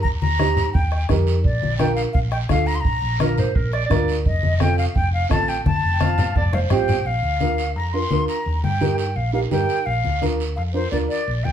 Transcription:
0.02 D#2 A#5, bombo low, long guiro
0.21 D#2 A#5, high conga
0.39 D#4 G4 C5, bombo rim, high conga, short guiro
0.57 low conga, short guiro
0.73 D#2 G5, bombo low, long guiro
0.92 bombo rim
1.09 F2 D#4 G4 A#4, bombo low, bombo rim, high conga, low conga, short guiro
1.27 short guiro
1.44 A#1 D5, bombo low, long guiro
1.62 A#1, high conga
1.78 D4 F4 A#4 G5, bombo rim, high conga, short guiro
1.96 F5, short guiro
2.13 A#1 F5, bombo low, long guiro
2.32 G5, bombo rim
2.49 D2 D4 F4 A4 F5, bombo low, bombo rim, high conga, short guiro
2.67 A#5, short guiro
2.75 C6
2.81 A#1 A#5
2.85 bombo low, long guiro
3.02 A#1
3.20 D4 F4 A#4, bombo rim, high conga, short guiro
3.38 C5, low conga, short guiro
3.55 A#1 A#4, bombo low, long guiro
3.73 D5, bombo rim
3.86 D4 D5
3.90 D2 F4 A#4, bombo low, bombo rim, high conga, low conga, short guiro
4.08 short guiro
4.25 F1 D#5, bombo low, long guiro
4.43 F1, high conga
4.60 C4 F4 A4 G5, bombo rim, high conga, short guiro
4.78 F5, short guiro
4.95 F1 G5, bombo low, long guiro
5.13 F5
5.29 A1 C4 F4 A4 A5, bombo low, bombo rim, high conga, short guiro
5.48 G5, short guiro
5.65 F1 A5, bombo low, high conga, long guiro
5.83 F1
5.93 G5
6.00 C4 F4 C5 F5, bombo rim, high conga, short guiro
6.18 low conga, short guiro
6.35 F1 D5, bombo low, low conga, long guiro
6.53 C5 F5, bombo rim, low conga
6.70 A1 C4 F4 G4 C5 G5, bombo rim, low conga, short guiro
6.88 low conga, short guiro
7.05 A#1 F5, long guiro
7.23 D2
7.40 D4 F4 A#4, high conga, short guiro
7.58 short guiro
7.76 F2 A#5, long guiro
7.93 D4 F4 A#4 C6
8.11 D2 D4 F4 A#4, high conga, short guiro
8.28 A#5, short guiro
8.46 D#2, long guiro
8.63 G2 G5, high conga
8.81 D#4 G4 A#4, high conga, short guiro
8.98 G5, short guiro
9.16 A#1 F5, long guiro
9.33 D#4 G4 A#4 F5
9.51 G2 D#4 G4 A#4 G5, high conga, short guiro
9.69 short guiro
9.86 A#1 F5, long guiro
10.04 D2, high conga
10.21 D4 F4 A#4, high conga, short guiro
10.40 short guiro
10.56 F2 F5, long guiro
10.73 D4 F4 A#4 C5
10.91 D2 D4 F4 A#4 D5, high conga, short guiro
11.09 D5, short guiro
11.28 A#1, long guiro
11.44 D2 G5, high conga

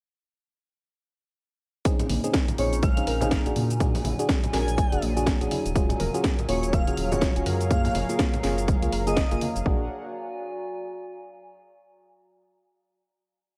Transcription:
1.85 A#3 C4 C#4 D#4 G#4, kick, closed hi-hat, shaker
1.99 C#4, closed hi-hat, low conga, shaker
2.09 A#1 A#3, open hi-hat, high conga
2.24 C4 C#4 D#4 G#4, closed hi-hat, shaker
2.34 A#3, kick, snare, closed hi-hat, shaker
2.39 G#5
2.48 closed hi-hat, high conga, low conga, shaker
2.58 A#1 C4 C#4 D#4 F4 G#4 C#5, open hi-hat
2.73 closed hi-hat, shaker
2.82 G#3 F5, kick, closed hi-hat, high conga, shaker
2.97 C4 C#4 D#4 G#4, closed hi-hat, shaker
3.07 A#1 A#4, open hi-hat
3.21 C4 C#4 D#4 G#4 F5, closed hi-hat, high conga, low conga, shaker
3.31 A#3 F5, kick, snare, closed hi-hat, shaker
3.46 A#1 D4 F#4 G#4, closed hi-hat, shaker
3.56 A#2 F#3 A#3, open hi-hat, high conga
3.70 closed hi-hat, shaker
3.80 A#3 D4 F#4 G#4, kick, closed hi-hat, shaker
3.95 open hi-hat, low conga, shaker
4.04 A#1 E4 D5, open hi-hat, high conga
4.19 D4 F#4 G#4, closed hi-hat, shaker
4.29 G#3, kick, snare, closed hi-hat, shaker
4.43 closed hi-hat, high conga, low conga, shaker
4.53 A#1 D4 F#4 G#4 A#4 G#5, snare, open hi-hat
4.68 closed hi-hat, shaker
4.77 A#3, kick, closed hi-hat, high conga, shaker
4.92 F#1 D4 F#4 G#4, closed hi-hat, shaker
5.02 A#1 A#3, open hi-hat
5.16 D4 F#4 G#4, closed hi-hat, high conga, shaker
5.26 A#3, kick, snare, closed hi-hat, shaker
5.41 A#1 D4 F#4 G#4, closed hi-hat, shaker
5.51 E4, open hi-hat, high conga
5.65 D#1, closed hi-hat, shaker
5.75 F#3 G#3 C#4 F4 F#4 G#4 A#4 C#5 F5, kick, closed hi-hat, shaker
5.89 C#5, closed hi-hat, low conga, shaker
6.00 D#1 A#4, open hi-hat, high conga
6.14 C#4 F4 F#4 G#4, closed hi-hat, shaker
6.24 A#3, kick, snare, closed hi-hat, shaker
6.39 closed hi-hat, high conga, low conga, shaker
6.48 D#1 A#3 C#4 F4 F#4 G#4 C#5 F5, open hi-hat
6.63 closed hi-hat, shaker
6.73 A#3 F5, kick, closed hi-hat, high conga, shaker
6.87 C#4 F4 F#4 G#4, closed hi-hat, shaker
6.97 D#1 F4, open hi-hat
7.12 C#4 F4 F#4 G#4 C#5, closed hi-hat, high conga, low conga, shaker
7.21 G#3, kick, snare, closed hi-hat, shaker
7.36 D#1 C#4 F4 F#4 G#4, closed hi-hat, shaker
7.46 F#2 A#4, open hi-hat, high conga
7.61 closed hi-hat, shaker
7.70 A#3 F4 G#4 F5, kick, closed hi-hat, shaker
7.85 F5, open hi-hat, low conga, shaker
7.95 F#1 A#3, open hi-hat, high conga
7.99 A#5
8.09 A#3 F4 G#4, closed hi-hat, shaker
8.19 A#3, kick, snare, closed hi-hat, shaker
8.33 closed hi-hat, high conga, low conga, shaker
8.43 F#1 A#3 F4 G#4, snare, open hi-hat
8.58 closed hi-hat, shaker
8.68 G#3, kick, closed hi-hat, high conga, shaker
8.82 C#2 A#3 F4 G#4, closed hi-hat, shaker
8.92 F#1 A#4, open hi-hat
9.06 A#3 F4 G#4 D#5, closed hi-hat, high conga, shaker
9.17 A#3, kick, snare, closed hi-hat, shaker
9.31 F#1 A#3 F4 G#4, closed hi-hat, shaker
9.41 A#3, open hi-hat, high conga
9.56 F#1, closed hi-hat, shaker
9.65 A#1 A#3 D4 F#4 G#4 A#4 C#5 F#5, kick
9.74 D5
9.82 G#5

